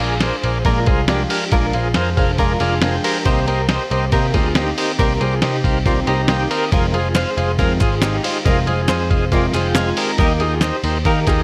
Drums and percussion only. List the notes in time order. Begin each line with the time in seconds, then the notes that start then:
0.20 snare, ride
0.44 ride
0.65 kick, ride
0.86 kick, ride
1.08 snare, ride
1.30 open hi-hat, ride
1.52 kick, ride
1.73 ride
1.94 snare, ride
2.17 kick, ride
2.38 kick, ride
2.60 ride
2.82 snare, ride
3.04 open hi-hat, ride
3.25 kick, ride
3.48 ride
3.69 snare, ride
3.91 ride
4.12 kick, ride
4.34 kick, ride
4.55 snare, ride
4.78 open hi-hat, ride
4.99 kick, ride
5.21 ride
5.42 snare, ride
5.64 kick, ride
5.86 kick, ride
6.07 ride
6.28 snare, ride
6.51 ride
6.72 kick, ride
6.94 ride
7.15 snare, clap, ride
7.38 ride
7.59 kick, ride
7.80 kick, clap, ride
8.02 snare, clap, ride
8.24 open hi-hat, ride
8.46 kick, ride
8.67 ride
8.88 snare, clap, ride
9.11 kick, ride
9.32 kick, ride
9.53 clap, ride
9.75 snare, clap, ride
9.97 open hi-hat, ride
10.18 kick, ride
10.40 ride
10.61 snare, clap, ride
10.84 ride
11.05 kick, ride
11.27 kick, clap, ride